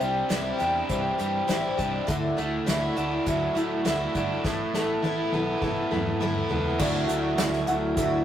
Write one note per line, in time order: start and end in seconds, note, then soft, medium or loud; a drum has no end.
0.00 0.21 C2 medium
0.00 1.19 C3 medium
0.00 1.18 G3 medium
0.00 0.29 C4 soft
0.00 0.29 D4 soft
0.00 0.30 G4 medium
0.00 closed hi-hat medium
0.29 0.51 C2 medium
0.29 0.59 C3 medium
0.29 0.60 E3 medium
0.29 0.60 C4 medium
0.29 0.59 D4 medium
0.29 1.48 E4 medium
0.29 0.57 G4 medium
0.29 snare loud
0.29 closed hi-hat medium
0.59 0.81 E2 medium
0.59 0.88 C4 soft
0.59 0.89 D4 soft
0.59 0.89 G4 medium
0.59 closed hi-hat medium
0.89 1.10 C2 medium
0.89 1.19 E3 medium
0.89 1.19 C4 medium
0.89 1.18 D4 medium
0.89 1.17 G4 medium
0.89 kick medium
0.89 closed hi-hat medium
1.18 1.40 G2 medium
1.18 2.08 G3 medium
1.18 1.47 C4 soft
1.18 1.48 D4 soft
1.18 1.48 G4 soft
1.18 closed hi-hat medium
1.47 1.70 A1 medium
1.47 1.78 C3 medium
1.47 1.78 E3 medium
1.47 1.78 C4 medium
1.47 1.78 D4 medium
1.47 2.11 E4 medium
1.47 1.76 G4 medium
1.47 snare medium
1.47 closed hi-hat medium
1.77 1.99 C2 medium
1.77 2.08 C4 soft
1.77 2.08 D4 soft
1.77 2.08 G4 medium
1.77 kick medium
1.77 closed hi-hat medium
2.07 2.29 D2 medium
2.07 2.37 D3 medium
2.07 2.38 E3 medium
2.07 2.38 A3 medium
2.07 2.37 E4 medium
2.07 2.36 F#4 medium
2.07 kick loud
2.07 closed hi-hat medium
2.37 2.58 D2 medium
2.37 2.66 A3 soft
2.37 2.66 E4 soft
2.37 2.67 F#4 medium
2.37 closed hi-hat soft
2.66 2.88 D2 medium
2.66 2.96 D3 medium
2.66 2.97 E3 medium
2.66 2.97 A3 medium
2.66 2.96 E4 medium
2.66 2.95 F#4 medium
2.66 snare loud
2.66 closed hi-hat medium
2.96 3.17 D2 medium
2.96 3.26 A3 soft
2.96 4.14 D4 medium
2.96 3.27 E4 medium
2.96 3.26 F#4 medium
2.96 closed hi-hat medium
3.26 3.47 D2 medium
3.26 3.56 E3 medium
3.26 4.45 F#3 medium
3.26 3.56 A3 medium
3.26 3.55 E4 medium
3.26 3.54 F#4 medium
3.26 kick medium
3.26 closed hi-hat medium
3.55 3.76 A2 medium
3.55 3.84 A3 soft
3.55 3.85 E4 soft
3.55 3.85 F#4 medium
3.55 closed hi-hat medium
3.85 4.06 D2 medium
3.85 4.15 D3 medium
3.85 4.15 E3 medium
3.85 4.15 A3 medium
3.85 4.15 E4 medium
3.85 4.13 F#4 medium
3.85 snare medium
3.85 closed hi-hat medium
4.15 4.35 G1 medium
4.15 4.43 A3 soft
4.15 4.45 D4 medium
4.15 4.44 E4 soft
4.15 4.44 F#4 medium
4.15 kick medium
4.15 closed hi-hat medium
4.44 4.65 A1 medium
4.44 5.92 A2 medium
4.44 4.74 A3 medium
4.44 4.74 B3 medium
4.44 4.74 E4 medium
4.44 4.73 A4 medium
4.44 kick loud
4.44 snare soft
4.74 4.94 A1 medium
4.74 5.90 A3 medium
4.74 5.04 B3 soft
4.74 5.04 E4 soft
4.74 5.04 A4 medium
4.74 snare medium
5.03 5.24 A1 medium
5.03 5.33 A3 medium
5.03 5.34 B3 medium
5.03 5.33 E4 medium
5.03 5.32 A4 medium
5.03 high tom medium
5.32 5.53 B1 medium
5.32 5.62 B3 soft
5.32 5.62 E4 soft
5.32 5.63 A4 medium
5.32 high tom medium
5.61 5.82 A1 medium
5.61 6.79 E3 medium
5.61 5.91 A3 medium
5.61 5.92 B3 medium
5.61 5.91 E4 medium
5.61 5.90 A4 medium
5.61 kick medium
5.61 mid tom medium
5.76 mid tom medium
5.91 6.12 E2 medium
5.91 6.79 A3 medium
5.91 6.21 B3 soft
5.91 6.21 E4 soft
5.91 6.21 A4 soft
5.91 mid tom medium
6.06 mid tom medium
6.21 6.41 G1 medium
6.21 6.51 A3 medium
6.21 6.50 B3 medium
6.21 6.49 E4 medium
6.21 6.48 A4 medium
6.21 mid tom medium
6.35 floor tom medium
6.49 6.70 C#2 medium
6.49 6.79 B3 soft
6.49 6.79 E4 soft
6.49 6.79 A4 medium
6.49 floor tom medium
6.66 floor tom medium
6.79 7.04 D2 medium
6.79 7.09 D3 medium
6.79 7.09 E3 medium
6.79 8.24 F#3 medium
6.79 7.08 A3 medium
6.79 8.24 D4 medium
6.79 7.08 E4 medium
6.79 7.27 F#4 loud
6.79 7.07 F#4 loud
6.79 7.27 D5 medium
6.79 7.27 E5 loud
6.79 kick loud
6.79 crash loud
7.08 7.34 D2 medium
7.08 7.38 A3 soft
7.08 7.38 E4 medium
7.08 7.38 F#4 medium
7.08 closed hi-hat medium
7.38 7.63 D2 medium
7.38 7.68 E3 medium
7.38 7.68 A3 medium
7.38 7.68 E4 medium
7.38 7.85 F#4 medium
7.38 7.67 F#4 medium
7.38 7.85 D5 medium
7.38 7.86 E5 medium
7.38 snare loud
7.38 closed hi-hat medium
7.38 tambourine medium
7.53 snare soft
7.67 7.92 D2 medium
7.67 7.97 A3 soft
7.67 7.97 E4 medium
7.67 7.97 F#4 medium
7.67 closed hi-hat medium
7.96 8.21 D2 medium
7.96 8.24 D3 medium
7.96 8.24 E3 medium
7.96 8.24 A3 medium
7.96 8.24 E4 loud
7.96 8.24 F#4 medium
7.96 8.24 D5 medium
7.96 8.24 E5 medium
7.96 kick loud
7.96 closed hi-hat medium